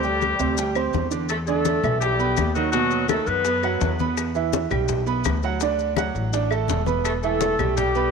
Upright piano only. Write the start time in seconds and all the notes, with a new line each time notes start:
0.03 G3 G4 G5
0.39 C3 C4 C5
0.57 G3 G4 G5
0.76 C4 C5 C6
1.11 D3 D4 D5
1.48 D3 D4 D5
1.84 E3 E4 E5
2.19 B3 B4 B5
2.56 D#3 D#4 D#5
2.74 B2 B3 B4
3.09 D#3 D#4 D#5
3.45 B3 B4 B5
3.63 F#3 F#4 F#5
4.00 B3 B4 B5
4.35 E3 E4 E5
4.70 G3 G4 G5
5.06 B3 B4 B5
5.44 F#3 F#4 F#5
5.62 D3 D4 D5
5.97 F#3 F#4 F#5
6.33 D4 D5 D6
6.51 A3 A4 A5
6.86 B3 B4 B5
7.23 E3 E4 E5
7.59 G3 G4 G5
7.95 B3 B4 B5